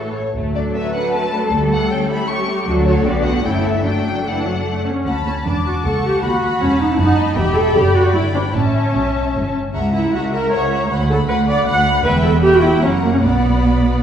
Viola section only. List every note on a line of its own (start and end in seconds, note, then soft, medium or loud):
0.00 0.13 E3 soft
0.00 0.13 A3 soft
0.35 1.48 F#3 soft
0.35 2.63 A3 soft
1.52 2.67 G3 soft
2.66 3.02 F#3 soft
2.66 3.02 A3 soft
3.04 3.43 D3 soft
3.04 3.43 B3 soft
3.44 3.83 E3 soft
3.44 3.83 A3 soft
3.84 4.26 F#3 soft
3.84 4.25 A3 soft
4.26 4.45 E3 soft
4.46 4.66 F#3 soft
4.66 4.86 A3 soft
4.86 5.07 C#4 soft
5.27 5.35 C#4 soft
5.46 5.65 D4 soft
5.66 5.73 F#4 medium
5.85 6.04 A4 medium
6.04 6.23 G4 medium
6.23 6.61 F#4 medium
6.62 6.81 C#4 medium
6.81 6.90 D#4 soft
6.92 6.95 E4 medium
7.00 7.37 D#4 medium
7.37 7.56 G4 medium
7.56 7.75 A4 medium
7.76 7.95 G4 medium
7.95 8.14 F#4 medium
8.14 8.22 E4 medium
8.34 8.42 D4 medium
8.54 9.52 C#4 medium
9.93 10.12 E4 soft
10.13 10.33 F#4 medium
10.33 10.52 A#4 medium
10.53 10.91 C#5 medium
11.10 11.17 A4 medium
11.28 11.36 B4 medium
11.48 11.67 D5 medium
11.67 12.04 F#5 medium
12.04 12.12 B4 medium
12.23 12.31 A4 medium
12.42 12.52 G4 medium
12.53 12.63 F#4 medium
12.61 12.81 E4 medium
12.82 12.90 C#4 medium
13.02 13.11 A#3 medium
13.13 13.17 C#4 soft
13.23 14.03 B3 soft